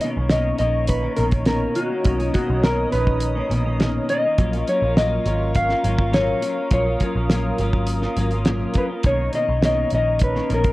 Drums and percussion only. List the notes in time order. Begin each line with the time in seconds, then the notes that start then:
0.01 closed hi-hat
0.30 snare, closed hi-hat
0.59 closed hi-hat
0.88 kick, closed hi-hat
1.17 closed hi-hat
1.31 kick, closed hi-hat
1.46 snare, closed hi-hat
1.75 closed hi-hat
2.04 kick, closed hi-hat
2.20 closed hi-hat
2.34 kick, closed hi-hat
2.63 snare, closed hi-hat
2.92 closed hi-hat
3.07 kick
3.21 closed hi-hat
3.51 closed hi-hat
3.80 snare, closed hi-hat
4.09 closed hi-hat
4.38 kick, closed hi-hat
4.53 closed hi-hat
4.67 closed hi-hat
4.97 snare, closed hi-hat
5.25 closed hi-hat
5.55 kick, closed hi-hat
5.69 snare
5.84 closed hi-hat
5.98 kick
6.13 snare, closed hi-hat
6.42 closed hi-hat
6.70 kick, closed hi-hat
7.00 kick, closed hi-hat
7.30 snare, closed hi-hat
7.58 closed hi-hat
7.73 kick
7.87 closed hi-hat
8.02 snare
8.17 closed hi-hat
8.31 closed hi-hat
8.45 snare, closed hi-hat
8.74 kick, closed hi-hat
9.03 kick, closed hi-hat
9.33 closed hi-hat
9.62 snare, closed hi-hat
9.90 closed hi-hat
10.19 kick, closed hi-hat
10.36 snare
10.50 closed hi-hat
10.64 kick, closed hi-hat